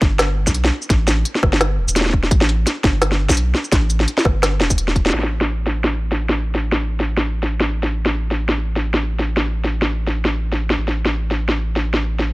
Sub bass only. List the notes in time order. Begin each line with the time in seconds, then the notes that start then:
0.02 G1
0.47 B1
0.90 A1
1.43 G1
1.78 E1
1.88 E1
2.31 A1
2.84 G1
3.29 B1
3.72 A1
4.25 G1
4.60 E1
4.70 E1
5.14 A1
10.78 A1